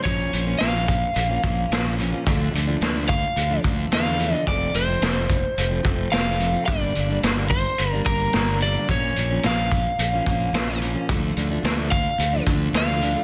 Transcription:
<<
  \new Staff \with { instrumentName = "Lead electric guitar" } { \time 4/4 \key bes \major \tempo 4 = 109 des''4 f''2~ f''8 r8 | r4. f''4 r8 f''4 | d''8 c''2~ c''8 f''4 | d''4 r8 c''4 bes'4 d''8 |
des''4 f''2~ f''8 r8 | r4. f''4 r8 f''4 | }
  \new Staff \with { instrumentName = "Steel-string acoustic guitar" } { \time 4/4 \key bes \major <bes, f bes des'>8 <bes, f bes des'>16 <f bes des'>16 <bes, f bes des'>16 <f bes des'>8. r16 <f bes des'>16 <bes, f bes des'>8 <bes, f bes des'>16 <f bes des'>16 <bes, f bes des'>16 <f bes des'>16 | <d f a d'>8 <d f a d'>16 <f a d'>16 <d f a d'>16 <f a d'>8. r16 <f a d'>16 <d f a d'>8 <d a d'>16 <a d'>16 <d f a d'>16 <f a d'>16 | <f, c f a c'>8 <c f a c'>16 <f a c'>16 <f, c f a c'>16 <f a c'>8. r16 <f a c'>16 <c f a c'>8 <f, c f a c'>16 <f a c'>16 <c f a c'>16 <f a c'>16 | <g, d g bes d'>8 <d g bes d'>16 <g bes d'>16 <g, d g bes d'>16 <g bes d'>8. r16 <g bes d'>16 <d g bes d'>8 <g, d g bes d'>16 <g bes d'>16 <d g bes d'>16 <g bes d'>16 |
<bes, f bes des'>8 <bes, f bes des'>16 <f bes des'>16 <bes, f bes des'>16 <f bes des'>8. r16 <f bes des'>16 <bes, f bes des'>8 <bes, f bes des'>16 <f bes des'>16 <bes, f bes des'>16 <f bes des'>16 | <d f a d'>8 <d f a d'>16 <f a d'>16 <d f a d'>16 <f a d'>8. r16 <f a d'>16 <d f a d'>8 <d f a d'>16 <f a d'>16 <d f a d'>16 <f a d'>16 | }
  \new Staff \with { instrumentName = "Fingered electric bass" } { \clef bass \time 4/4 \key bes \major bes,,8 bes,,8 bes,,4 bes,,8 bes,,8 bes,,4 | d,8 d,8 d,4 d,8 d,8 e,4 | f,,8 f,,8 f,,4 f,,8 f,,8 f,,4 | g,,8 g,,8 g,,4 g,,8 g,,8 g,,4 |
bes,,8 bes,,8 bes,,4 bes,,8 bes,,8 bes,,4 | d,8 d,8 d,4 d,8 d,8 d,4 | }
  \new DrumStaff \with { instrumentName = "Drums" } \drummode { \time 4/4 <hh bd>8 hh8 <hh sn>8 <hh bd>8 hh8 <hh bd>8 <hh sn>8 hh8 | <hh bd>8 hh8 <hh sn>8 <hh bd>8 hh8 <hh bd>8 <hh sn>8 hh8 | <hh bd>8 hh8 <hh sn>8 <hh bd>8 hh8 <hh bd>8 <hh sn>8 hh8 | <hh bd>8 hh8 <hh sn>8 <hh bd>8 hh8 <hh bd>8 <hh sn>8 hh8 |
<hh bd>8 hh8 <hh sn>8 <hh bd>8 hh8 <hh bd>8 <hh sn>8 hh8 | <hh bd>8 hh8 <hh sn>8 <hh bd>8 hh8 <hh bd>8 <hh sn>8 hh8 | }
>>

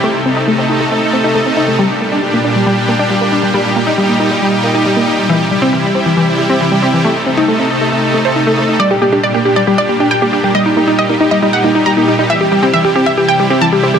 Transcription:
<<
  \new Staff \with { instrumentName = "Synth pluck" } { \time 4/4 \key g \minor \tempo 4 = 137 r1 | r1 | r1 | r1 |
r1 | d''16 g'16 g'16 g'16 d''16 g'16 g'16 d''16 g'16 d''16 g'16 g'16 g''16 g'16 g'16 g'16 | ees''16 ees'16 ees'16 ees'16 ees''16 ees'16 ees'16 ees''16 ees'16 fis''16 ees'16 ees'16 bes''16 ees'16 ees'16 ees'16 | e''16 g'16 g'16 g'16 e''16 g'16 g'16 e''16 g'16 g''16 g'16 g'16 a''16 g'16 g'16 g'16 | }
  \new Staff \with { instrumentName = "Supersaw synth" } { \time 4/4 \key g \minor <c a ees' a'>8 <c a ees' a'>8 <c a ees' a'>8 <c a ees' a'>8 <c a ees' a'>16 <c a ees' a'>8 <c a ees' a'>8 <c a ees' a'>8 <c a ees' a'>16 | <bes, g d' g'>8 <bes, g d' g'>8 <bes, g d' g'>8 <bes, g d' g'>8 <bes, g d' g'>16 <bes, g d' g'>8 <bes, g d' g'>8 <bes, g d' g'>8 <bes, g d' g'>16 | <bes, g ees' g'>8 <bes, g ees' g'>8 <bes, g ees' g'>8 <bes, g ees' g'>8 <bes, g ees' g'>16 <bes, g ees' g'>8 <bes, g ees' g'>8 <bes, g ees' g'>8 <bes, g ees' g'>16 | <c g e' g'>8 <c g e' g'>8 <c g e' g'>8 <c g e' g'>8 <c g e' g'>16 <c g e' g'>8 <c g e' g'>8 <c g e' g'>8 <c g e' g'>16 |
<c a ees' a'>8 <c a ees' a'>8 <c a ees' a'>8 <c a ees' a'>8 <c a ees' a'>16 <c a ees' a'>8 <c a ees' a'>8 <c a ees' a'>8 <c a ees' a'>16 | <bes, g d' g'>8 <bes, g d' g'>8 <bes, g d' g'>8 <bes, g d' g'>8 <bes, g d' g'>16 <bes, g d' g'>8 <bes, g d' g'>8 <bes, g d' g'>8 <bes, g d' g'>16 | <bes, g ees' g'>8 <bes, g ees' g'>8 <bes, g ees' g'>8 <bes, g ees' g'>8 <bes, g ees' g'>16 <bes, g ees' g'>8 <bes, g ees' g'>8 <bes, g ees' g'>8 <bes, g ees' g'>16 | <c g e' g'>8 <c g e' g'>8 <c g e' g'>8 <c g e' g'>8 <c g e' g'>16 <c g e' g'>8 <c g e' g'>8 <c g e' g'>8 <c g e' g'>16 | }
  \new Staff \with { instrumentName = "Synth pluck" } { \time 4/4 \key g \minor a16 r16 c'16 ees'16 a16 c'16 ees'16 a16 a16 r16 c'16 ees'16 a16 c'16 ees'16 a16 | g16 r16 bes16 d'16 g16 bes16 d'16 g16 g16 r16 bes16 d'16 g16 bes16 d'16 g16 | g16 r16 bes16 ees'16 g16 bes16 ees'16 g16 g16 r16 bes16 ees'16 g16 bes16 ees'16 g16 | e16 r16 g16 c'16 e16 g16 c'16 e16 e16 r16 g16 c'16 e16 g16 c'16 e16 |
a16 r16 c'16 ees'16 a16 c'16 ees'16 a16 a16 r16 a16 c''16 ees'16 a16 a16 ees'16 | g16 r16 bes16 d'16 g16 bes16 d'16 g16 g16 r16 bes16 d'16 g16 bes16 d'16 g16 | g16 r16 bes16 ees'16 g16 bes16 ees'16 g16 g16 r16 bes16 ees'16 g16 bes16 ees'16 g16 | e16 r16 g16 c'16 e16 g16 c'16 e16 e16 r16 g16 c'16 e16 g16 c'16 e16 | }
  \new DrumStaff \with { instrumentName = "Drums" } \drummode { \time 4/4 hh16 hh16 hh8 hh8 hh16 hh16 hh8 hh16 hh16 r8 hh16 hh16 | hh16 hh16 hh16 hh16 hh16 hh16 hh16 hh16 r16 hh16 hh8 hh16 hh16 hh8 | hh16 hh16 hh8 hh8 hh8 hh8 hh8 hh8 hh16 hh16 | hh16 hh16 hh8 hh16 hh16 hh16 hh16 hh16 hh16 hh8 hh8 hh16 hh16 |
hh16 hh16 hh16 hh16 hh16 hh16 hh16 hh16 hh16 hh16 hh16 hh16 hh16 hh16 hh16 hh16 | r16 hh16 hh8 hh16 hh16 hh16 hh16 hh16 hh16 hh8 hh8 hh16 hh16 | hh8 hh8 hh8 hh8 r8 hh8 r8 hh8 | r16 hh16 hh8 hh16 hh16 hh8 hh8 hh8 hh8 hh16 hh16 | }
>>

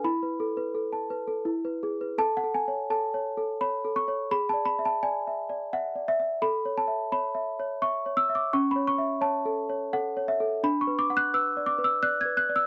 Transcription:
\new Staff \with { instrumentName = "Celesta" } { \time 3/4 \key a \major \tempo 4 = 85 << { b''2 r4 | a''16 fis''16 gis''8 a''4 b''8 cis'''8 | b''16 a''16 b''16 a''16 gis''4 fis''8 e''8 | b''8 a''8 b''4 cis'''8 e'''16 d'''16 |
cis'''16 b''16 cis'''8 a''4 fis''8 e''8 | b''16 cis'''16 d'''16 fis'''16 e'''8 d'''16 e'''16 fis'''16 gis'''16 fis'''16 e'''16 | } \\ { e'16 b'16 a'16 b'16 a'16 a''16 b'16 a'16 e'16 b'16 gis'16 b'16 | \tuplet 3/2 { a'8 a'8 cis''8 a'8 cis''8 a'8 cis''8 a'8 cis''8 } | \tuplet 3/2 { gis'8 d''8 e''8 d''8 e''8 d''8 e''8 d''8 e''8 } | \tuplet 3/2 { a'8 cis''8 e''8 cis''8 e''8 cis''8 e''8 cis''8 e''8 } |
\tuplet 3/2 { cis'8 cis''8 e''8 cis''8 a'8 cis''8 a'8 cis''8 a'8 } | \tuplet 3/2 { d'8 b'8 fis''8 b'8 d''8 b'8 d''8 b'8 d''8 } | } >> }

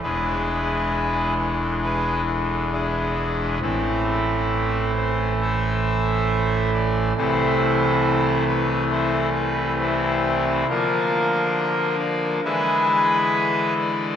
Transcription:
<<
  \new Staff \with { instrumentName = "Pipe organ" } { \time 4/4 \key a \minor \tempo 4 = 68 <e' gis' b'>4. a'8 <e' gis' b'>8 a'8 <d' e' gis'>4 | <c' e' a'>4. c''8 <a' c'' e''>4. d''8 | <e' a' c''>4. b'8 <e' a' c''>8 b'8 <c' e' a'>4 | <d' f' bes'>4. d''8 <gis' b' e''>4. d''8 | }
  \new Staff \with { instrumentName = "Pipe organ" } { \clef bass \time 4/4 \key a \minor <e,, e, e gis d'>1 | <a,, a, e a>1 | <c, c e a>1 | <d f bes>2 <d e gis e'>2 | }
>>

